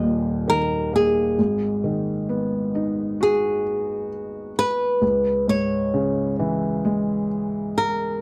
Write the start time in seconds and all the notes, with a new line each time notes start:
Already playing: D#1 D#2 D#5
0.03 A#2
0.48 D#3 A#4
0.93 A#3 G#4
1.38 G#1 G#2
1.84 D#3
2.29 B3
2.75 D#4
3.21 F#4 G#4
4.59 B4
5.01 C#2
5.48 G#2 C#5
5.94 C#3
6.39 E3
6.85 G#3
7.78 A#4